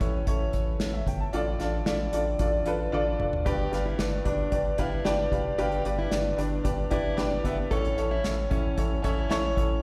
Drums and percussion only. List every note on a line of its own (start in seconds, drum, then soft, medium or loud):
0.01 kick loud
0.01 closed hi-hat medium
0.27 kick medium
0.27 closed hi-hat medium
0.53 kick medium
0.53 closed hi-hat medium
0.80 snare medium
0.80 closed hi-hat medium
1.07 kick medium
1.07 closed hi-hat medium
1.33 closed hi-hat medium
1.60 snare soft
1.60 closed hi-hat medium
1.86 snare loud
1.86 closed hi-hat medium
2.13 closed hi-hat medium
2.39 kick medium
2.39 closed hi-hat medium
2.66 closed hi-hat medium
2.93 high tom soft
3.20 mid tom medium
3.33 floor tom medium
3.46 kick medium
3.46 closed hi-hat medium
3.73 snare soft
3.73 closed hi-hat medium
3.99 snare medium
3.99 closed hi-hat medium
4.25 kick medium
4.25 closed hi-hat medium
4.52 kick medium
4.52 closed hi-hat medium
4.78 kick medium
4.78 closed hi-hat medium
5.05 snare medium
5.05 closed hi-hat medium
5.32 kick medium
5.32 closed hi-hat medium
5.59 closed hi-hat medium
5.72 closed hi-hat soft
5.85 closed hi-hat medium
6.11 snare medium
6.11 closed hi-hat medium
6.38 closed hi-hat medium
6.65 kick medium
6.65 closed hi-hat loud
6.91 kick medium
6.91 closed hi-hat medium
7.18 snare medium
7.18 closed hi-hat medium
7.44 kick medium
7.44 closed hi-hat medium
7.71 kick medium
7.71 closed hi-hat medium
7.85 closed hi-hat soft
7.98 closed hi-hat medium
8.24 snare loud
8.24 closed hi-hat medium
8.51 kick loud
8.51 closed hi-hat medium
8.78 kick medium
8.78 closed hi-hat loud
9.04 kick medium
9.04 closed hi-hat medium
9.31 snare medium
9.31 closed hi-hat medium
9.57 kick medium
9.57 closed hi-hat medium